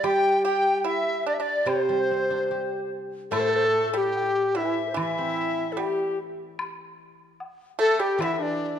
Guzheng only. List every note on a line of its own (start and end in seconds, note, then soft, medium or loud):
0.03 1.88 G3 medium
1.66 4.15 C3 medium
1.89 3.54 G3 soft
2.11 3.76 C4 soft
2.30 3.96 D4 soft
2.51 4.16 G4 soft
3.31 5.77 A2 medium
4.96 7.39 E3 medium
5.18 6.79 C4 soft
8.18 8.79 E3 medium